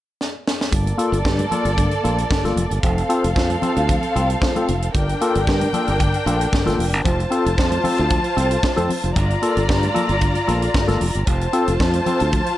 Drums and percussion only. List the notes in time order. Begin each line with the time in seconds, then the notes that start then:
0.21 snare
0.48 snare
0.61 snare
0.72 kick, closed hi-hat, muted conga
0.87 closed hi-hat, muted conga
0.99 closed hi-hat
1.13 closed hi-hat
1.25 kick, snare
1.39 closed hi-hat, muted conga, high conga
1.51 closed hi-hat, low conga
1.65 closed hi-hat
1.78 kick, closed hi-hat, muted conga, high conga
1.91 closed hi-hat, muted conga
2.05 closed hi-hat, high conga
2.18 closed hi-hat
2.30 kick, snare, muted conga, high conga
2.44 snare, closed hi-hat, high conga
2.57 closed hi-hat, low conga
2.71 closed hi-hat
2.83 kick, closed hi-hat, muted conga
2.98 closed hi-hat, muted conga
3.10 closed hi-hat
3.24 closed hi-hat
3.36 kick, snare, muted conga
3.50 closed hi-hat, high conga
3.62 closed hi-hat, low conga
3.77 closed hi-hat
3.89 kick, closed hi-hat, muted conga, high conga
4.03 closed hi-hat, muted conga
4.16 closed hi-hat, high conga
4.30 closed hi-hat
4.42 kick, snare, high conga
4.56 closed hi-hat, muted conga, high conga
4.68 closed hi-hat, low conga
4.82 closed hi-hat
4.95 kick, closed hi-hat, muted conga
5.09 closed hi-hat, muted conga
5.21 closed hi-hat
5.35 closed hi-hat
5.47 kick, snare, muted conga
5.61 closed hi-hat, muted conga, high conga
5.73 closed hi-hat, low conga
5.88 closed hi-hat
5.99 kick, closed hi-hat, high conga
6.14 closed hi-hat, muted conga
6.26 closed hi-hat, high conga
6.41 closed hi-hat
6.52 kick, snare, muted conga, high conga
6.66 snare, closed hi-hat, muted conga, high conga
6.78 open hi-hat, low conga
6.94 closed hi-hat
7.05 kick, closed hi-hat, low conga
7.20 closed hi-hat, muted conga
7.32 closed hi-hat
7.46 closed hi-hat
7.58 kick, snare, muted conga
7.72 closed hi-hat, muted conga, high conga
7.84 open hi-hat, high conga, low conga
7.98 closed hi-hat
8.10 kick, closed hi-hat, high conga
8.24 closed hi-hat, muted conga
8.37 closed hi-hat, high conga
8.51 closed hi-hat
8.63 kick, snare, muted conga, high conga
8.77 closed hi-hat, high conga
8.89 open hi-hat, low conga
9.04 closed hi-hat
9.16 kick, closed hi-hat, muted conga
9.30 closed hi-hat
9.43 closed hi-hat
9.57 closed hi-hat
9.69 kick, snare
9.83 closed hi-hat, muted conga, high conga
9.96 closed hi-hat, low conga
10.09 closed hi-hat
10.21 kick, closed hi-hat, muted conga, high conga
10.35 closed hi-hat, muted conga
10.49 closed hi-hat, high conga
10.62 closed hi-hat
10.74 kick, snare, muted conga, high conga
10.88 snare, closed hi-hat, high conga
11.01 open hi-hat, low conga
11.15 closed hi-hat
11.27 kick, closed hi-hat
11.41 closed hi-hat
11.53 closed hi-hat
11.68 closed hi-hat
11.80 kick, snare
11.94 closed hi-hat, muted conga, high conga
12.06 closed hi-hat, low conga
12.20 closed hi-hat
12.33 kick, closed hi-hat, muted conga, high conga
12.46 closed hi-hat